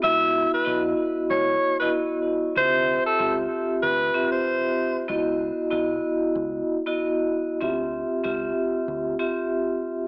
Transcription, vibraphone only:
0.02 B3 E4 F#4 E5
0.65 B3 E4 F#4 D#5
1.81 B3 E4 F#4 D#5
2.56 C4 F4 G4 E5
3.19 C4 F4 G4 E5
4.14 C4 F4 G4 E5
5.08 B3 E4 F#4 D#5
5.70 B3 E4 F#4 D#5
6.86 B3 E4 F#4 D#5
7.61 C4 F4 G4 E5
8.24 C4 F4 G4 E5
9.19 C4 F4 G4 E5

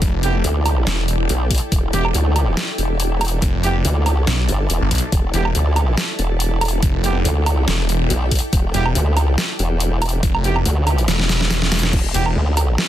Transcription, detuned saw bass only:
0.02 F1
0.87 E1
1.93 E1
3.42 F1
4.27 B1
4.81 G1
4.91 B1
5.34 E1
6.83 F1
7.68 E1
8.74 E1
10.23 F1
11.08 E1
11.72 E1
12.14 E1

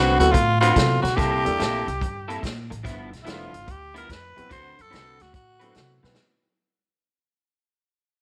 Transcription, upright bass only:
Already playing: C2
0.20 D2
0.34 A2
0.76 C3
1.04 B2
1.18 C2
1.46 E2
1.60 A#1
1.87 C2
2.02 G2
2.43 A#2
2.71 A1
2.85 G1
3.13 B1
3.27 F1
3.53 G1
3.68 D2
4.10 F2
4.38 E2
4.51 D2
4.79 F#2
4.93 C2
5.21 D2
5.34 A2
5.76 C3
6.04 B2

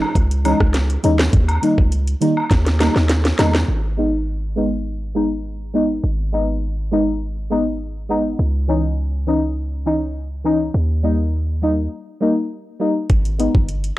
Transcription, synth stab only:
0.44 E3 G#3 C#4 D#4
1.03 E3 G#3 C#4 D#4
1.62 D#3 G3 A#3 D#4
2.21 D#3 G3 A#3 D#4
2.80 D#3 G3 A#3 D#4
3.38 D#3 G3 A#3 D#4
3.97 G#3 B3 D#4
4.56 G#3 B3 D#4
5.15 G#3 B3 D#4
5.74 G#3 B3 D#4
6.33 G#3 B3 D#4
6.91 G#3 B3 D#4
7.50 G#3 B3 D#4
8.09 G#3 B3 D#4
8.68 E3 C#4 D#4
9.27 E3 C#4 D#4
9.86 E3 C#4 D#4
10.44 E3 C#4 D#4
11.03 G3 A#3 D#4
11.62 G3 A#3 D#4
12.20 G3 A#3 D#4
12.79 G3 A#3 D#4
13.38 G#3 B3 D#4

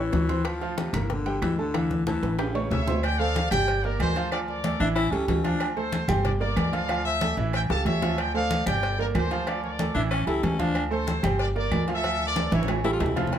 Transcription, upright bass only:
0.13 D2
0.93 G1
1.42 D2
2.22 A1
2.71 D2
3.51 G1
3.99 D2
4.80 A1
5.12 C#2
5.28 D2
6.08 G1
6.56 D2
7.37 A1
7.70 C#2
7.85 D2
8.66 G1
9.15 D2
9.95 A1
10.27 C#2
10.43 D2
11.23 G1
11.71 D2
12.52 A1
13.00 D2

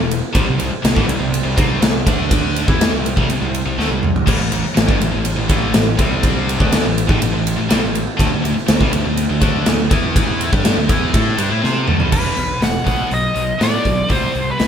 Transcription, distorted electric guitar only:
Already playing: E2 B2
0.33 C3 G3
0.47 C3 G3
0.58 C3 G3
0.70 muted distorted electric guitar stroke
0.82 C3 G3
0.95 A2 E3
1.07 C3 G3
1.19 C3 G3
1.44 C3 G3
1.56 C3 G3 C4
1.81 C3 G3
2.06 D3 A3 D4
2.67 E3 B3 E4
2.91 C3 G3
3.16 C3 G3
3.29 C3 G3
3.41 C3 G3
3.66 C3 G3
3.78 D3 A3
3.90 C3 G3
4.26 A2 E3
4.38 A2 E3
4.51 A2 E3
4.63 muted distorted electric guitar stroke
4.75 A2 E3
4.87 G2 D3
4.99 A2 E3
5.12 A2 E3
5.36 A2 E3
5.49 A2 E3 A3
5.73 A2 E3
5.97 C3 G3 C4
6.59 D3 A3 D4
6.83 A2 E3
7.07 A2 E3
7.21 A2 E3
7.33 A2 E3
7.57 A2 E3
7.69 C3 G3
7.81 A2 E3
8.17 D3 A3
8.30 D3 A3
8.43 D3 A3
8.54 muted distorted electric guitar stroke
8.67 D3 A3
8.80 C3 G3
8.92 D3 A3
9.04 D3 A3
9.29 D3 A3
9.40 D3 A3 D4
9.65 D3 A3
9.90 E3 B3 E4
10.51 G3 D4 G4
10.76 D3 A3
10.88 E3 B3 E4
11.13 A3 E4 A4
11.38 G3 D4
11.49 A3 E4
11.61 C4 G4 C5
11.86 D3 A3
11.98 C3 G3
12.10 E2 B2 E3
12.36 E2 B2
12.60 E2 B2
12.84 B2 F#3 B3
13.09 B2 F#3
13.34 B2 F#3
13.59 B2 F#3 B3
13.84 B2 F#3
14.09 C3 G3 C4
14.33 C3 G3
14.58 C3 G3

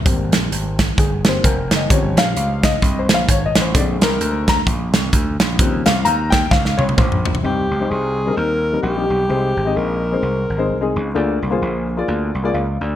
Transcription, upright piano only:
Already playing: A#4
0.05 G3 A#3 C4
0.99 G#4
1.24 G3 A#3 C4
1.29 C5
1.44 A#4
1.76 D#5
1.90 C#3 F3 G3 C4 C#5
2.18 F5
2.64 D#5
2.99 C5
3.14 F5
3.30 C#5
3.46 D#5
3.61 C5
3.74 D3 G#3 C4 D5
4.03 A#4
4.49 A#5
5.59 C#3 F3 G3 C4
5.86 F5
6.05 A#5
6.30 G5
6.51 F5
6.77 C#5
6.97 C5
7.43 C3 G3 C4 D#4 C5
7.80 G3 C4 D#4 C5
8.26 G3 C4 D4 A#4
8.33 D#4
8.72 G3 C4 D#4 A#4
8.95 G3 C4 D#4 G4
9.29 C3 G#3 C4 D#4 C5
9.65 G#3 C4 D#4 D#5
10.12 G#3 C4 D#4 C5
10.58 G#3 C4 D#4 C5
10.81 G#3 C4 D#4 G#4
11.14 D3 A#3 F4 G#4 D5
11.50 A#3 F4 G#4 C5
11.97 A#3 F4 G#4 D5
12.43 A#3 F4 G#4 D5
12.54 F5
12.81 D5

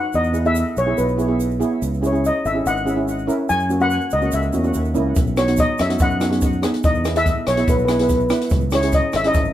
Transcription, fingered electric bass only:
0.14 E2
0.77 B1
0.98 B1
1.82 C#2
2.45 G#1
2.66 G#1
3.50 F#2
4.13 C#2
4.33 C#2
4.55 E2
4.75 D#2
4.97 C#2
5.17 B1
5.80 F#2
6.00 F#2
6.84 E2
7.47 B1
7.68 B1
8.52 C#2
9.14 G#1
9.35 G#1

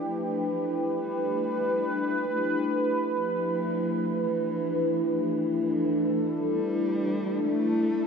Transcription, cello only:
Already playing: F3
1.03 G3
2.27 A3
2.36 G3
2.44 F3
2.54 G3
3.16 F3
4.23 E3
5.03 F3
5.29 E3
6.38 G3
7.45 A3

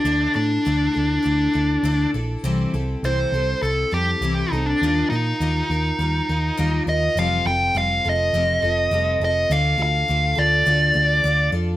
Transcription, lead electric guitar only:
Already playing: D4
0.36 D4
3.05 C5
3.63 A4
3.94 G4
4.51 D#4
4.66 D4
5.10 D#4
6.89 D#5
7.19 F5
7.47 G5
7.78 F5
8.09 D#5
9.25 D#5
9.52 F5
9.82 F5
10.39 D5

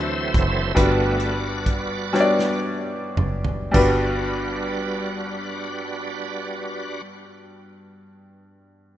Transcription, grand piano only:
Already playing: D3 A3 C4 D4 F#4 C5
0.75 G2 G3 B3 D4 F#4 B4
2.13 G3 B3 D4 F#4 C#5
2.20 D5
3.71 G2 G3 B3 D4 F#4
3.76 B4

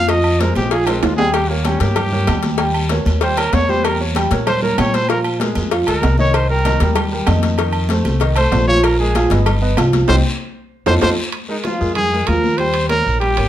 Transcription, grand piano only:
0.09 F3 F4 F5
0.40 G#3 G#4 C5
0.71 F3 F4 F5
0.87 G#3 G#4 A#4
1.19 G3 G4 G5
1.50 A#3 A#4 C#5
1.65 G3 G4 G5
1.81 A#3 A#4 C#5
2.12 A#3 A#4 C#5
2.28 G3 G4 G5
2.59 G3 G4 G5
2.91 A#3 A#4 C#5
3.22 G3 G4 G5
3.38 A#3 A#4 C#5
3.69 G3 G4 G5
4.00 A#3 A#4 C#5
4.16 G3 G4 G5
4.32 A#3 A#4 C#5
4.62 A#3 A#4 C#5
4.79 G3 G4 G5
5.09 F3 F4 F5
5.41 G#3 G#4 A#4
5.71 F3 F4 F5
5.87 G#3 G#4 A#4
6.19 D#3 D#4 D#5
6.50 G3 G4 A#4
6.66 D#3 D#4 D#5
6.81 G3 G4 A#4
7.12 G3 G4 A#4
7.28 D#3 D#4 D#5
7.59 D#3 D#4 D#5
7.90 A3 A4 C5
8.21 D#3 D#4 D#5
8.37 A3 A4 C5
8.68 F3 F4 F5
9.00 G#3 G#4 A#4
9.16 F3 F4 F5
9.31 B3 B4 D#5
9.62 B3 B4 D#5
9.78 F3 F4 F5
10.09 C4 D#4 G4
10.86 D#4 F4 A4
11.02 D#4 F4 A4
11.48 G#3 G#4 A#4
11.65 F3 F4 F5
11.80 G#3 G#4 A#4
12.13 G#3 G#4 A#4
12.27 F3 F4 F5
12.60 G3 G4 G5
12.90 A#3 A#4 C#5
13.22 G3 G4 G5
13.37 A#3 A#4 C#5

